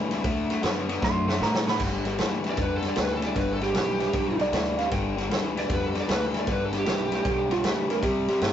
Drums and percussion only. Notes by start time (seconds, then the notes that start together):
0.11 snare, ride
0.24 kick, snare, ride
0.50 snare, ride
0.63 snare, ride
0.89 snare, ride
1.02 kick, snare
1.29 snare
1.42 snare
1.54 snare
1.68 snare
1.80 kick, snare, crash
2.05 snare, ride
2.19 snare, ride
2.44 snare, ride
2.57 kick, snare, ride
2.83 snare, ride
2.96 snare, ride
3.22 snare, ride
3.36 kick, snare, ride
3.61 snare, ride
3.75 snare, ride
4.00 snare, ride
4.13 kick, snare, ride
4.39 snare, ride
4.53 snare, ride
4.79 snare, ride
4.91 kick, snare, ride
5.18 snare, ride
5.31 snare, ride
5.57 snare, ride
5.70 kick, snare, ride
5.95 snare, ride
6.09 snare, ride
6.34 snare, ride
6.47 kick, snare, ride
6.73 snare, ride
6.86 snare, ride
7.12 snare, ride
7.25 kick, snare, ride
7.51 snare, ride
7.64 snare, ride
7.90 snare, ride
8.03 kick, snare, ride
8.28 snare, ride
8.41 snare, ride